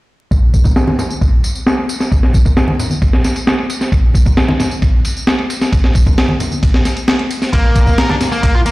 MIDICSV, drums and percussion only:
0, 0, Header, 1, 2, 480
1, 0, Start_track
1, 0, Tempo, 451128
1, 334, Time_signature, 4, 2, 24, 8
1, 9271, End_track
2, 0, Start_track
2, 0, Title_t, "Drums"
2, 331, Note_on_c, 9, 36, 102
2, 332, Note_on_c, 9, 51, 82
2, 334, Note_on_c, 9, 54, 29
2, 438, Note_off_c, 9, 36, 0
2, 439, Note_off_c, 9, 51, 0
2, 441, Note_off_c, 9, 54, 0
2, 569, Note_on_c, 9, 63, 59
2, 570, Note_on_c, 9, 51, 60
2, 571, Note_on_c, 9, 36, 85
2, 572, Note_on_c, 9, 54, 68
2, 676, Note_off_c, 9, 51, 0
2, 676, Note_off_c, 9, 63, 0
2, 677, Note_off_c, 9, 36, 0
2, 678, Note_off_c, 9, 54, 0
2, 684, Note_on_c, 9, 64, 73
2, 692, Note_on_c, 9, 36, 87
2, 694, Note_on_c, 9, 54, 39
2, 790, Note_off_c, 9, 64, 0
2, 798, Note_off_c, 9, 36, 0
2, 800, Note_off_c, 9, 54, 0
2, 810, Note_on_c, 9, 38, 98
2, 810, Note_on_c, 9, 51, 74
2, 812, Note_on_c, 9, 54, 29
2, 916, Note_off_c, 9, 38, 0
2, 916, Note_off_c, 9, 51, 0
2, 918, Note_off_c, 9, 54, 0
2, 930, Note_on_c, 9, 63, 93
2, 934, Note_on_c, 9, 38, 47
2, 1036, Note_off_c, 9, 63, 0
2, 1040, Note_off_c, 9, 38, 0
2, 1051, Note_on_c, 9, 64, 77
2, 1052, Note_on_c, 9, 38, 46
2, 1052, Note_on_c, 9, 51, 62
2, 1054, Note_on_c, 9, 54, 69
2, 1157, Note_off_c, 9, 64, 0
2, 1158, Note_off_c, 9, 38, 0
2, 1158, Note_off_c, 9, 51, 0
2, 1160, Note_off_c, 9, 54, 0
2, 1175, Note_on_c, 9, 54, 39
2, 1281, Note_off_c, 9, 54, 0
2, 1292, Note_on_c, 9, 36, 102
2, 1293, Note_on_c, 9, 51, 79
2, 1293, Note_on_c, 9, 54, 29
2, 1398, Note_off_c, 9, 36, 0
2, 1399, Note_off_c, 9, 51, 0
2, 1399, Note_off_c, 9, 54, 0
2, 1531, Note_on_c, 9, 51, 64
2, 1531, Note_on_c, 9, 54, 66
2, 1637, Note_off_c, 9, 51, 0
2, 1638, Note_off_c, 9, 54, 0
2, 1652, Note_on_c, 9, 54, 42
2, 1759, Note_off_c, 9, 54, 0
2, 1772, Note_on_c, 9, 38, 107
2, 1772, Note_on_c, 9, 51, 78
2, 1774, Note_on_c, 9, 54, 30
2, 1878, Note_off_c, 9, 38, 0
2, 1878, Note_off_c, 9, 51, 0
2, 1880, Note_off_c, 9, 54, 0
2, 1893, Note_on_c, 9, 51, 40
2, 1999, Note_off_c, 9, 51, 0
2, 2011, Note_on_c, 9, 51, 67
2, 2013, Note_on_c, 9, 54, 73
2, 2117, Note_off_c, 9, 51, 0
2, 2119, Note_off_c, 9, 54, 0
2, 2133, Note_on_c, 9, 38, 51
2, 2135, Note_on_c, 9, 54, 39
2, 2239, Note_off_c, 9, 38, 0
2, 2242, Note_off_c, 9, 54, 0
2, 2252, Note_on_c, 9, 36, 104
2, 2252, Note_on_c, 9, 51, 77
2, 2254, Note_on_c, 9, 54, 29
2, 2358, Note_off_c, 9, 51, 0
2, 2359, Note_off_c, 9, 36, 0
2, 2360, Note_off_c, 9, 54, 0
2, 2374, Note_on_c, 9, 38, 46
2, 2481, Note_off_c, 9, 38, 0
2, 2484, Note_on_c, 9, 63, 65
2, 2492, Note_on_c, 9, 36, 84
2, 2492, Note_on_c, 9, 54, 67
2, 2494, Note_on_c, 9, 51, 63
2, 2590, Note_off_c, 9, 63, 0
2, 2598, Note_off_c, 9, 54, 0
2, 2599, Note_off_c, 9, 36, 0
2, 2600, Note_off_c, 9, 51, 0
2, 2608, Note_on_c, 9, 64, 71
2, 2613, Note_on_c, 9, 36, 89
2, 2616, Note_on_c, 9, 54, 41
2, 2714, Note_off_c, 9, 64, 0
2, 2719, Note_off_c, 9, 36, 0
2, 2722, Note_off_c, 9, 54, 0
2, 2733, Note_on_c, 9, 38, 100
2, 2733, Note_on_c, 9, 51, 79
2, 2733, Note_on_c, 9, 54, 30
2, 2839, Note_off_c, 9, 38, 0
2, 2839, Note_off_c, 9, 51, 0
2, 2839, Note_off_c, 9, 54, 0
2, 2848, Note_on_c, 9, 63, 88
2, 2954, Note_off_c, 9, 63, 0
2, 2974, Note_on_c, 9, 51, 66
2, 2974, Note_on_c, 9, 54, 69
2, 2974, Note_on_c, 9, 64, 80
2, 3080, Note_off_c, 9, 51, 0
2, 3080, Note_off_c, 9, 64, 0
2, 3081, Note_off_c, 9, 54, 0
2, 3084, Note_on_c, 9, 63, 71
2, 3094, Note_on_c, 9, 54, 39
2, 3191, Note_off_c, 9, 63, 0
2, 3201, Note_off_c, 9, 54, 0
2, 3211, Note_on_c, 9, 51, 83
2, 3212, Note_on_c, 9, 36, 104
2, 3213, Note_on_c, 9, 54, 30
2, 3318, Note_off_c, 9, 36, 0
2, 3318, Note_off_c, 9, 51, 0
2, 3319, Note_off_c, 9, 54, 0
2, 3334, Note_on_c, 9, 38, 51
2, 3440, Note_off_c, 9, 38, 0
2, 3451, Note_on_c, 9, 54, 69
2, 3454, Note_on_c, 9, 38, 45
2, 3454, Note_on_c, 9, 51, 64
2, 3558, Note_off_c, 9, 54, 0
2, 3561, Note_off_c, 9, 38, 0
2, 3561, Note_off_c, 9, 51, 0
2, 3574, Note_on_c, 9, 54, 41
2, 3575, Note_on_c, 9, 51, 42
2, 3680, Note_off_c, 9, 54, 0
2, 3681, Note_off_c, 9, 51, 0
2, 3694, Note_on_c, 9, 38, 106
2, 3694, Note_on_c, 9, 51, 83
2, 3694, Note_on_c, 9, 54, 30
2, 3800, Note_off_c, 9, 38, 0
2, 3800, Note_off_c, 9, 51, 0
2, 3801, Note_off_c, 9, 54, 0
2, 3815, Note_on_c, 9, 51, 41
2, 3921, Note_off_c, 9, 51, 0
2, 3933, Note_on_c, 9, 51, 65
2, 3934, Note_on_c, 9, 54, 71
2, 4039, Note_off_c, 9, 51, 0
2, 4041, Note_off_c, 9, 54, 0
2, 4054, Note_on_c, 9, 38, 37
2, 4055, Note_on_c, 9, 54, 41
2, 4161, Note_off_c, 9, 38, 0
2, 4162, Note_off_c, 9, 54, 0
2, 4171, Note_on_c, 9, 36, 108
2, 4173, Note_on_c, 9, 51, 84
2, 4174, Note_on_c, 9, 54, 31
2, 4278, Note_off_c, 9, 36, 0
2, 4279, Note_off_c, 9, 51, 0
2, 4280, Note_off_c, 9, 54, 0
2, 4404, Note_on_c, 9, 63, 65
2, 4412, Note_on_c, 9, 36, 84
2, 4414, Note_on_c, 9, 51, 61
2, 4415, Note_on_c, 9, 54, 74
2, 4510, Note_off_c, 9, 63, 0
2, 4518, Note_off_c, 9, 36, 0
2, 4521, Note_off_c, 9, 51, 0
2, 4522, Note_off_c, 9, 54, 0
2, 4526, Note_on_c, 9, 64, 75
2, 4532, Note_on_c, 9, 36, 89
2, 4534, Note_on_c, 9, 54, 41
2, 4632, Note_off_c, 9, 64, 0
2, 4638, Note_off_c, 9, 36, 0
2, 4641, Note_off_c, 9, 54, 0
2, 4652, Note_on_c, 9, 38, 109
2, 4652, Note_on_c, 9, 51, 84
2, 4656, Note_on_c, 9, 54, 28
2, 4758, Note_off_c, 9, 38, 0
2, 4758, Note_off_c, 9, 51, 0
2, 4763, Note_off_c, 9, 54, 0
2, 4772, Note_on_c, 9, 38, 44
2, 4773, Note_on_c, 9, 63, 95
2, 4878, Note_off_c, 9, 38, 0
2, 4879, Note_off_c, 9, 63, 0
2, 4892, Note_on_c, 9, 38, 47
2, 4892, Note_on_c, 9, 51, 65
2, 4895, Note_on_c, 9, 54, 70
2, 4900, Note_on_c, 9, 64, 83
2, 4998, Note_off_c, 9, 38, 0
2, 4998, Note_off_c, 9, 51, 0
2, 5002, Note_off_c, 9, 54, 0
2, 5006, Note_off_c, 9, 64, 0
2, 5015, Note_on_c, 9, 54, 39
2, 5121, Note_off_c, 9, 54, 0
2, 5130, Note_on_c, 9, 51, 85
2, 5131, Note_on_c, 9, 36, 97
2, 5134, Note_on_c, 9, 54, 28
2, 5236, Note_off_c, 9, 51, 0
2, 5237, Note_off_c, 9, 36, 0
2, 5240, Note_off_c, 9, 54, 0
2, 5370, Note_on_c, 9, 51, 65
2, 5372, Note_on_c, 9, 54, 66
2, 5477, Note_off_c, 9, 51, 0
2, 5479, Note_off_c, 9, 54, 0
2, 5496, Note_on_c, 9, 54, 39
2, 5602, Note_off_c, 9, 54, 0
2, 5609, Note_on_c, 9, 38, 104
2, 5609, Note_on_c, 9, 51, 78
2, 5616, Note_on_c, 9, 54, 29
2, 5715, Note_off_c, 9, 38, 0
2, 5715, Note_off_c, 9, 51, 0
2, 5722, Note_off_c, 9, 54, 0
2, 5731, Note_on_c, 9, 51, 40
2, 5837, Note_off_c, 9, 51, 0
2, 5852, Note_on_c, 9, 51, 63
2, 5853, Note_on_c, 9, 54, 67
2, 5958, Note_off_c, 9, 51, 0
2, 5960, Note_off_c, 9, 54, 0
2, 5974, Note_on_c, 9, 38, 53
2, 5974, Note_on_c, 9, 54, 42
2, 6081, Note_off_c, 9, 38, 0
2, 6081, Note_off_c, 9, 54, 0
2, 6092, Note_on_c, 9, 36, 102
2, 6093, Note_on_c, 9, 51, 85
2, 6095, Note_on_c, 9, 54, 29
2, 6198, Note_off_c, 9, 36, 0
2, 6199, Note_off_c, 9, 51, 0
2, 6202, Note_off_c, 9, 54, 0
2, 6213, Note_on_c, 9, 38, 47
2, 6319, Note_on_c, 9, 63, 62
2, 6320, Note_off_c, 9, 38, 0
2, 6331, Note_on_c, 9, 51, 58
2, 6332, Note_on_c, 9, 36, 80
2, 6334, Note_on_c, 9, 54, 67
2, 6425, Note_off_c, 9, 63, 0
2, 6438, Note_off_c, 9, 36, 0
2, 6438, Note_off_c, 9, 51, 0
2, 6441, Note_off_c, 9, 54, 0
2, 6449, Note_on_c, 9, 64, 69
2, 6453, Note_on_c, 9, 36, 85
2, 6454, Note_on_c, 9, 54, 36
2, 6556, Note_off_c, 9, 64, 0
2, 6559, Note_off_c, 9, 36, 0
2, 6561, Note_off_c, 9, 54, 0
2, 6574, Note_on_c, 9, 54, 29
2, 6576, Note_on_c, 9, 38, 104
2, 6576, Note_on_c, 9, 51, 78
2, 6680, Note_off_c, 9, 54, 0
2, 6682, Note_off_c, 9, 38, 0
2, 6682, Note_off_c, 9, 51, 0
2, 6687, Note_on_c, 9, 63, 85
2, 6794, Note_off_c, 9, 63, 0
2, 6810, Note_on_c, 9, 64, 77
2, 6812, Note_on_c, 9, 54, 63
2, 6815, Note_on_c, 9, 51, 64
2, 6916, Note_off_c, 9, 64, 0
2, 6918, Note_off_c, 9, 54, 0
2, 6921, Note_off_c, 9, 51, 0
2, 6929, Note_on_c, 9, 63, 69
2, 6934, Note_on_c, 9, 54, 39
2, 7035, Note_off_c, 9, 63, 0
2, 7041, Note_off_c, 9, 54, 0
2, 7052, Note_on_c, 9, 36, 99
2, 7052, Note_on_c, 9, 54, 29
2, 7053, Note_on_c, 9, 51, 79
2, 7158, Note_off_c, 9, 36, 0
2, 7158, Note_off_c, 9, 54, 0
2, 7159, Note_off_c, 9, 51, 0
2, 7174, Note_on_c, 9, 38, 54
2, 7280, Note_off_c, 9, 38, 0
2, 7291, Note_on_c, 9, 38, 44
2, 7291, Note_on_c, 9, 51, 65
2, 7291, Note_on_c, 9, 54, 64
2, 7398, Note_off_c, 9, 38, 0
2, 7398, Note_off_c, 9, 51, 0
2, 7398, Note_off_c, 9, 54, 0
2, 7412, Note_on_c, 9, 51, 42
2, 7412, Note_on_c, 9, 54, 39
2, 7518, Note_off_c, 9, 51, 0
2, 7519, Note_off_c, 9, 54, 0
2, 7532, Note_on_c, 9, 38, 103
2, 7532, Note_on_c, 9, 51, 79
2, 7532, Note_on_c, 9, 54, 28
2, 7638, Note_off_c, 9, 38, 0
2, 7638, Note_off_c, 9, 51, 0
2, 7638, Note_off_c, 9, 54, 0
2, 7653, Note_on_c, 9, 51, 42
2, 7760, Note_off_c, 9, 51, 0
2, 7773, Note_on_c, 9, 51, 65
2, 7773, Note_on_c, 9, 54, 65
2, 7879, Note_off_c, 9, 54, 0
2, 7880, Note_off_c, 9, 51, 0
2, 7893, Note_on_c, 9, 38, 39
2, 7894, Note_on_c, 9, 54, 39
2, 7999, Note_off_c, 9, 38, 0
2, 8001, Note_off_c, 9, 54, 0
2, 8012, Note_on_c, 9, 36, 104
2, 8012, Note_on_c, 9, 54, 28
2, 8013, Note_on_c, 9, 51, 85
2, 8118, Note_off_c, 9, 36, 0
2, 8119, Note_off_c, 9, 51, 0
2, 8119, Note_off_c, 9, 54, 0
2, 8243, Note_on_c, 9, 63, 58
2, 8252, Note_on_c, 9, 36, 82
2, 8252, Note_on_c, 9, 51, 62
2, 8252, Note_on_c, 9, 54, 62
2, 8349, Note_off_c, 9, 63, 0
2, 8358, Note_off_c, 9, 36, 0
2, 8358, Note_off_c, 9, 54, 0
2, 8359, Note_off_c, 9, 51, 0
2, 8363, Note_on_c, 9, 64, 69
2, 8373, Note_on_c, 9, 36, 87
2, 8374, Note_on_c, 9, 54, 39
2, 8469, Note_off_c, 9, 64, 0
2, 8479, Note_off_c, 9, 36, 0
2, 8481, Note_off_c, 9, 54, 0
2, 8492, Note_on_c, 9, 38, 104
2, 8492, Note_on_c, 9, 51, 81
2, 8492, Note_on_c, 9, 54, 27
2, 8599, Note_off_c, 9, 38, 0
2, 8599, Note_off_c, 9, 51, 0
2, 8599, Note_off_c, 9, 54, 0
2, 8612, Note_on_c, 9, 63, 92
2, 8614, Note_on_c, 9, 38, 44
2, 8719, Note_off_c, 9, 63, 0
2, 8720, Note_off_c, 9, 38, 0
2, 8733, Note_on_c, 9, 38, 50
2, 8733, Note_on_c, 9, 51, 66
2, 8733, Note_on_c, 9, 54, 67
2, 8736, Note_on_c, 9, 64, 69
2, 8839, Note_off_c, 9, 38, 0
2, 8839, Note_off_c, 9, 51, 0
2, 8840, Note_off_c, 9, 54, 0
2, 8842, Note_off_c, 9, 64, 0
2, 8854, Note_on_c, 9, 54, 37
2, 8960, Note_off_c, 9, 54, 0
2, 8972, Note_on_c, 9, 36, 100
2, 8973, Note_on_c, 9, 51, 77
2, 8975, Note_on_c, 9, 54, 27
2, 9078, Note_off_c, 9, 36, 0
2, 9079, Note_off_c, 9, 51, 0
2, 9081, Note_off_c, 9, 54, 0
2, 9212, Note_on_c, 9, 51, 65
2, 9214, Note_on_c, 9, 54, 66
2, 9271, Note_off_c, 9, 51, 0
2, 9271, Note_off_c, 9, 54, 0
2, 9271, End_track
0, 0, End_of_file